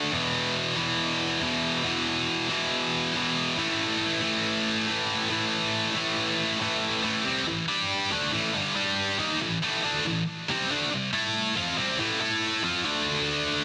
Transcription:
0.00 0.11 A3 medium
0.00 0.12 D4 medium
0.11 0.78 E2 medium
0.11 0.76 B2 loud
0.11 0.75 E3 loud
0.75 1.39 E2 medium
0.75 1.40 B2 medium
0.75 1.43 E3 medium
1.41 1.82 E2 medium
1.41 1.84 B2 medium
1.41 1.86 E3 medium
1.83 2.47 E2 loud
1.83 2.48 B2 loud
1.83 2.48 E3 loud
2.49 3.12 E2 medium
2.49 3.13 B2 medium
2.49 3.16 E3 medium
3.13 3.55 E2 medium
3.13 3.56 B2 medium
3.13 3.57 E3 medium
3.56 4.23 A2 medium
3.56 4.22 E3 loud
3.56 4.20 A3 loud
4.21 4.86 A2 medium
4.21 4.88 E3 medium
4.21 4.89 A3 medium
4.87 5.28 A2 medium
4.87 5.29 E3 medium
4.87 5.30 A3 medium
5.29 5.93 A2 medium
5.29 5.94 E3 loud
5.29 5.93 A3 loud
5.94 6.58 A2 medium
5.94 6.59 E3 medium
5.94 6.58 A3 medium
6.59 7.01 A2 medium
6.59 7.02 E3 medium
6.59 7.02 A3 medium
7.03 7.24 A2 loud
7.03 7.24 E3 medium
7.03 7.24 A3 loud
7.24 7.45 C3 medium
7.24 7.45 G3 medium
7.24 7.46 C4 medium
7.46 7.63 A2 medium
7.46 7.63 E3 medium
7.68 8.10 G3 medium
7.68 8.10 D4 medium
7.68 8.11 G4 medium
8.11 8.32 D3 loud
8.11 8.32 A3 loud
8.11 8.32 D4 loud
8.32 8.53 A2 loud
8.32 8.53 E3 loud
8.32 8.54 A3 loud
8.53 8.74 G2 medium
8.53 8.75 D3 medium
8.53 8.74 G3 medium
8.75 9.18 G3 loud
8.75 9.18 D4 loud
8.75 9.18 G4 loud
9.18 9.39 D#3 medium
9.18 9.39 A#3 medium
9.18 9.40 D#4 loud
9.40 9.57 A2 medium
9.40 9.58 E3 medium
9.62 9.83 A2 loud
9.62 9.83 E3 loud
9.62 9.83 A3 loud
9.83 10.04 D3 medium
9.83 10.05 A3 loud
9.83 10.05 D4 loud
10.05 10.22 A2 medium
10.05 10.23 E3 medium
10.49 10.69 C3 loud
10.49 10.70 G3 loud
10.49 10.70 C4 loud
10.69 10.90 D3 medium
10.69 10.91 A3 medium
10.69 10.91 D4 medium
10.91 11.08 C3 medium
10.91 11.09 G3 medium
11.13 11.55 A3 medium
11.13 11.56 E4 medium
11.13 11.56 A4 medium
11.56 11.76 F3 medium
11.56 11.77 C4 loud
11.56 11.77 F4 loud
11.77 11.98 C3 medium
11.77 11.99 G3 medium
11.77 11.99 C4 loud
11.98 12.20 A2 medium
11.98 12.20 E3 loud
11.98 12.19 A3 loud
12.20 12.63 A3 loud
12.20 12.63 E4 loud
12.20 12.64 A4 loud
12.63 12.84 F3 medium
12.63 12.84 C4 loud
12.63 12.85 F4 loud
12.85 13.64 D3 medium
12.85 13.64 A3 medium
12.85 13.64 D4 medium

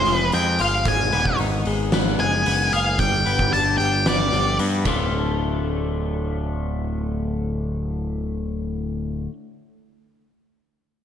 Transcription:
0.00 0.32 G#3 medium
0.00 0.59 C4 medium
0.00 0.17 C5 medium
0.05 0.31 F1 medium
0.05 0.86 F3 medium
0.05 open hi-hat soft
0.17 0.29 B4 medium
0.32 0.58 F2 medium
0.32 0.86 G#3 medium
0.32 0.60 G5 medium
0.32 open hi-hat medium
0.59 0.84 G1 medium
0.59 0.86 F4 medium
0.59 0.87 F5 medium
0.59 open hi-hat soft
0.85 1.10 G#1 medium
0.85 2.19 G#2 medium
0.85 1.36 G#5 medium
0.85 kick loud
0.85 open hi-hat medium
1.12 1.38 D#1 medium
1.12 1.92 B3 medium
1.12 open hi-hat soft
1.26 kick medium
1.38 1.64 G#1 medium
1.38 2.72 D#4 medium
1.38 open hi-hat medium
1.65 1.90 G#1 medium
1.65 2.19 G#3 medium
1.65 open hi-hat soft
1.92 2.17 G#1 medium
1.92 2.45 B3 medium
1.92 snare loud
1.92 open hi-hat medium
2.19 2.44 F#1 medium
2.19 2.99 G#3 medium
2.19 2.74 G#5 medium
2.19 open hi-hat soft
2.46 2.71 F#1 medium
2.46 2.99 B3 medium
2.46 open hi-hat medium
2.72 2.99 F#1 medium
2.72 2.99 G#4 medium
2.72 3.00 F5 medium
2.72 open hi-hat soft
2.99 3.24 G1 medium
2.99 4.32 G2 medium
2.99 3.53 G5 medium
2.99 kick medium
2.99 open hi-hat medium
3.26 3.51 G1 medium
3.26 4.05 B3 medium
3.26 open hi-hat soft
3.39 kick medium
3.53 3.77 G1 medium
3.53 4.86 D4 medium
3.53 3.77 A5 medium
3.53 open hi-hat medium
3.78 4.04 G1 medium
3.78 4.31 G3 medium
3.78 4.06 G5 medium
3.78 open hi-hat soft
4.06 4.31 G1 medium
4.06 4.58 B3 medium
4.06 4.56 D5 medium
4.06 snare medium
4.06 open hi-hat medium
4.32 4.57 G1 medium
4.32 4.85 G3 medium
4.32 open hi-hat soft
4.59 4.84 G2 medium
4.59 4.86 B3 medium
4.59 open hi-hat medium
4.85 9.26 D1 medium
4.85 9.29 D2 medium
4.85 9.30 A2 medium
4.85 9.31 D3 medium
4.85 9.32 A3 medium
4.85 kick medium
4.85 ride medium
4.89 9.33 F4 medium

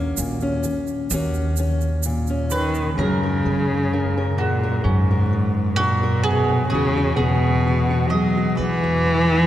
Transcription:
0.00 0.14 D#2 loud
0.00 0.55 D#3 medium
0.00 1.11 A#3 medium
0.00 0.41 C#4 medium
0.00 1.13 F#4 medium
0.17 0.62 D#2 medium
0.17 0.65 A#2 medium
0.17 shaker medium
0.41 1.12 C#4 medium
0.41 shaker soft
0.63 1.49 D#3 medium
0.63 shaker medium
0.87 shaker soft
1.10 2.94 D#2 loud
1.10 1.96 D#2 medium
1.10 1.82 A#3 medium
1.10 1.58 C#4 medium
1.10 2.94 F#4 medium
1.10 shaker medium
1.34 shaker soft
1.56 2.43 D#3 medium
1.56 2.29 C#4 medium
1.56 shaker medium
1.81 shaker soft
2.03 2.52 A#2 medium
2.03 shaker loud
2.27 2.93 C#4 medium
2.27 shaker soft
2.50 2.95 D#3 medium
2.50 2.99 D#3 medium
2.50 2.95 B4 medium
2.50 shaker medium
2.74 shaker soft
2.98 3.42 F#2 loud
2.98 3.83 F#2 medium
2.98 4.34 C#3 medium
2.98 3.45 F#3 medium
2.98 4.40 G#3 medium
2.98 4.35 A#4 medium
2.98 3.22 A#4 medium
3.23 3.93 A#4 medium
3.45 4.81 F#2 medium
3.45 4.30 F#3 medium
3.93 4.39 C#3 medium
3.93 4.16 A#4 medium
4.17 4.62 A#4 medium
4.36 4.84 A#2 medium
4.36 5.23 F#3 medium
4.36 6.74 G#3 medium
4.36 4.84 F#4 medium
4.63 5.09 A#4 medium
4.82 6.68 F#2 medium
4.82 5.77 G#2 medium
4.82 5.76 C#4 medium
4.86 5.70 F#2 medium
5.11 5.79 A#4 medium
5.33 6.16 F#3 medium
5.75 6.24 A#2 medium
5.75 6.63 C#3 medium
5.75 6.24 F#4 medium
5.80 6.02 A#4 medium
6.03 6.67 A#4 medium
6.22 6.49 F#2 medium
6.22 6.68 B2 medium
6.22 6.69 G#4 medium
6.49 6.72 F2 medium
6.69 7.16 E2 medium
6.69 7.17 C#3 loud
6.69 7.14 G#4 medium
6.73 7.57 E2 medium
6.73 7.19 E3 medium
6.73 8.13 G#3 medium
6.73 6.97 F#4 medium
6.97 7.67 F#4 medium
7.16 8.55 E2 medium
7.16 8.11 B2 loud
7.16 8.11 G#4 medium
7.20 8.03 E3 medium
7.66 8.13 B2 medium
7.66 7.90 F#4 medium
7.90 8.37 F#4 medium
8.10 8.97 E3 medium
8.10 8.58 F#3 loud
8.10 9.47 G#3 medium
8.10 8.57 D#5 medium
8.37 8.83 F#4 medium
8.56 9.47 E2 medium
8.56 9.44 E2 medium
8.56 9.47 E3 loud
8.56 9.47 B4 medium
8.84 9.47 F#4 medium
9.06 9.47 E3 medium

